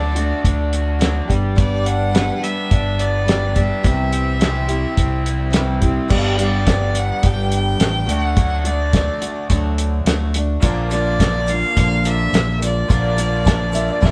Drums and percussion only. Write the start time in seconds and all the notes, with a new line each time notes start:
0.16 closed hi-hat
0.45 kick, closed hi-hat
0.73 closed hi-hat
1.01 snare, closed hi-hat
1.30 kick, closed hi-hat
1.58 kick, closed hi-hat
1.86 closed hi-hat
2.15 snare, closed hi-hat
2.44 closed hi-hat
2.71 kick, closed hi-hat
2.99 closed hi-hat
3.28 snare, closed hi-hat
3.56 kick, closed hi-hat
3.84 kick, closed hi-hat
4.13 closed hi-hat
4.41 snare, closed hi-hat
4.69 closed hi-hat
4.97 kick, closed hi-hat
5.26 closed hi-hat
5.53 snare, closed hi-hat
5.82 kick, closed hi-hat
6.10 kick, crash
6.39 closed hi-hat
6.67 kick, snare, closed hi-hat
6.95 closed hi-hat
7.23 kick, closed hi-hat
7.52 closed hi-hat
7.80 snare, closed hi-hat
8.09 closed hi-hat
8.37 kick, closed hi-hat
8.65 closed hi-hat
8.93 kick, snare, closed hi-hat
9.22 closed hi-hat
9.50 kick, closed hi-hat
9.78 closed hi-hat
10.06 snare, closed hi-hat
10.34 closed hi-hat
10.61 kick, closed hi-hat, shaker
10.91 closed hi-hat, shaker
11.05 shaker
11.19 kick, snare, closed hi-hat, shaker
11.47 closed hi-hat, shaker
11.76 kick, closed hi-hat, shaker
12.04 closed hi-hat, shaker
12.33 snare, closed hi-hat, shaker
12.62 closed hi-hat, shaker
12.90 kick, closed hi-hat, shaker
13.18 closed hi-hat, shaker
13.31 shaker
13.45 kick, snare, closed hi-hat, shaker
13.72 closed hi-hat, shaker
13.88 shaker
14.02 kick, snare, shaker